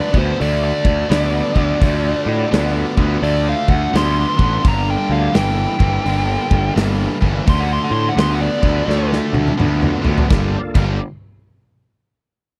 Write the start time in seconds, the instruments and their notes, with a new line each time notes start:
Already playing: tonewheel organ D4 F#4 A4, lead electric guitar D5
0.12 picked electric bass D2, distorted electric guitar D3 B3, kick
0.19 lead electric guitar C5
0.40 picked electric bass D2, distorted electric guitar D3 A3, lead electric guitar D5, open hi-hat
0.64 lead electric guitar D5
0.85 picked electric bass D2, kick
1.09 picked electric bass D2, distorted electric guitar D3 B3, snare, open hi-hat
1.54 picked electric bass D2, distorted electric guitar D3 B3, kick
1.80 picked electric bass D2, distorted electric guitar D3 A3, tonewheel organ F4 F#4 A4 D5, kick, open hi-hat
2.26 picked electric bass A2
2.51 picked electric bass D2, distorted electric guitar D3 B3, snare, open hi-hat
2.97 picked electric bass D2, distorted electric guitar D3 B3, kick
3.22 picked electric bass D2, distorted electric guitar D3 A3, lead electric guitar D5, open hi-hat
3.49 lead electric guitar F5
3.68 picked electric bass D2, lead electric guitar F#5, kick
3.93 picked electric bass D2, distorted electric guitar D3 B3, lead electric guitar C6, snare, open hi-hat
4.37 picked electric bass A1, distorted electric guitar D3 B3, kick
4.61 distorted electric guitar G2 D3, tonewheel organ A#3 D4 A4 F5, open hi-hat
4.65 picked electric bass G1, lead electric guitar A#5, kick
4.90 lead electric guitar G5
5.09 picked electric bass D2, lead electric guitar F5
5.33 picked electric bass G1, distorted electric guitar G2 E3, lead electric guitar G5, snare, open hi-hat
5.79 picked electric bass G1, distorted electric guitar G2 E3, kick
6.05 picked electric bass G1, distorted electric guitar G2 D3, open hi-hat
6.51 picked electric bass G1, kick
6.75 picked electric bass G1, distorted electric guitar G2 E3, snare, open hi-hat
7.21 picked electric bass G1, distorted electric guitar G2 E3, kick
7.46 picked electric bass D2, distorted electric guitar D3 A3, tonewheel organ C#4 F#4 G4 A#4, lead electric guitar C6, kick, open hi-hat
7.60 lead electric guitar F#5
7.68 tonewheel organ D4 F4 F#4 A4
7.73 lead electric guitar C6
7.84 lead electric guitar F#5
7.91 picked electric bass A2, lead electric guitar C6
8.09 lead electric guitar F#5
8.17 picked electric bass D2, distorted electric guitar D3 B3, lead electric guitar C6, snare, open hi-hat
8.31 lead electric guitar F#5
8.41 lead electric guitar D5
8.61 picked electric bass D2, distorted electric guitar D3 B3, kick
8.87 picked electric bass D2, distorted electric guitar D3 A3, snare
9.13 snare
9.33 picked electric bass D2, high tom
9.48 high tom
9.57 picked electric bass D2, distorted electric guitar D3 B3, mid tom
9.83 mid tom
10.02 picked electric bass D2, distorted electric guitar D3 B3, floor tom
10.18 floor tom
10.28 picked electric bass G1, distorted electric guitar G2 D3 G3, tonewheel organ A#3 D4 F4 A4, kick, snare
10.75 picked electric bass G1, distorted electric guitar G2 D3 G3, kick, crash